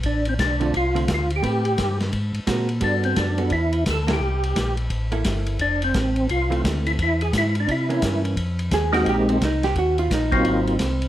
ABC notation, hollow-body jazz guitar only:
X:1
M:4/4
L:1/8
Q:"Swing" 1/4=173
K:C
V:1 name="Hollow-body jazz guitar"
z3 [D,A,CF] z [D,A,CF] z2 | [A,CGB] z4 z [^G,^B,^F^A] z | [G,B,^FA]3 [G,B,FA] z3 [_B,EA] | z4 z [_B,EA]3 |
z4 z [E,A,C]3 | z4 z [E,_B,_D]3 | [K:Fm] z2 A _G =G C E G | _G F E C4- C |]